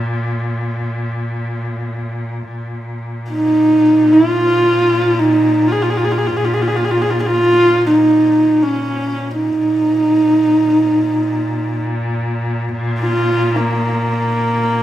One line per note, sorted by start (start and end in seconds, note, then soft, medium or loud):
0.00 2.48 A#2 medium
2.48 9.56 A#2 medium
3.31 4.14 D#4 medium
4.13 5.21 F4 medium
5.19 5.69 D#4 medium
5.67 5.73 F4 medium
5.72 5.84 G#4 medium
5.82 5.91 F4 medium
5.89 5.98 G#4 medium
5.97 6.06 F4 medium
6.04 6.13 G#4 medium
6.12 6.19 F4 medium
6.18 6.29 G#4 medium
6.27 6.38 F4 medium
6.36 6.46 G#4 medium
6.45 6.55 F4 medium
6.53 6.63 G#4 medium
6.62 6.69 F4 medium
6.67 6.78 G#4 medium
6.76 6.86 F4 medium
6.85 6.92 G#4 medium
6.91 7.03 F4 medium
7.02 7.12 G#4 medium
7.10 7.21 F4 medium
7.20 7.28 G#4 medium
7.26 7.85 F4 medium
7.86 8.64 D#4 medium
8.62 9.33 C#4 medium
9.31 11.82 D#4 medium
9.56 14.83 A#2 medium
13.01 13.58 F4 medium
13.57 14.83 A#3 medium